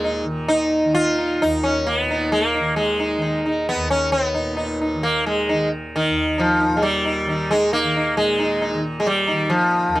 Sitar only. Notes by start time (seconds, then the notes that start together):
Already playing: G#3
0.04 D#4
0.48 D#4
0.94 F4
1.18 D#4
1.42 D#4
1.63 C#4
1.87 A#3
1.99 B3
2.11 D#4
2.32 A#3
2.54 D#4
2.76 G#3
3.00 D#4
3.22 D#4
3.46 D#4
3.69 B3
3.90 C#4
4.12 B3
4.34 D#4
4.57 D#4
4.81 D#4
5.03 A#3
5.26 G#3
5.49 D#4
5.96 D#3
6.38 F3 D#4
6.61 D#4
6.77 G#3
6.82 G3 D#4
7.05 D#4
7.28 D#4
7.51 G#3 D#4
7.73 A#3 D#4
7.97 D#4
8.17 G#3
8.39 D#4
8.62 D#4
9.00 G#3
9.07 G3
9.27 D#4
9.50 F3
9.95 D#3